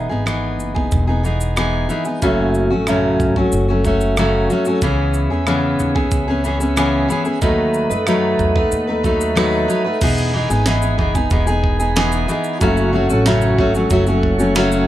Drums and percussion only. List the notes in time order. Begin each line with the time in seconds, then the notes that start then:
0.27 cross-stick, shaker
0.60 shaker
0.76 kick
0.92 kick, shaker
1.25 shaker
1.41 shaker
1.57 cross-stick, shaker
1.90 shaker
2.05 shaker
2.22 kick, shaker
2.55 shaker
2.87 cross-stick, shaker
3.20 kick, shaker
3.36 kick
3.52 shaker
3.85 kick, shaker
4.01 shaker
4.17 cross-stick, shaker
4.50 shaker
4.65 shaker
4.82 kick, shaker
5.14 shaker
5.47 cross-stick, shaker
5.79 shaker
5.96 kick
6.11 kick, shaker
6.45 shaker
6.61 shaker
6.77 cross-stick, shaker
7.10 shaker
7.25 shaker
7.42 kick, shaker
7.74 shaker
7.91 shaker
8.07 cross-stick, shaker
8.39 kick, shaker
8.56 kick
8.72 shaker
9.04 kick, shaker
9.21 shaker
9.37 cross-stick, shaker
9.70 shaker
10.01 kick, crash, shaker
10.18 shaker
10.51 shaker
10.66 snare, shaker
10.82 shaker
10.99 kick
11.15 kick, shaker
11.30 kick, shaker
11.47 shaker
11.64 kick
11.80 shaker
11.96 snare, shaker
12.12 shaker
12.29 shaker
12.44 shaker
12.61 kick, shaker
12.77 shaker
13.10 shaker
13.26 snare, shaker
13.42 shaker
13.59 kick
13.75 shaker
13.90 kick, shaker
14.07 shaker
14.23 kick
14.40 shaker
14.56 snare, shaker
14.72 shaker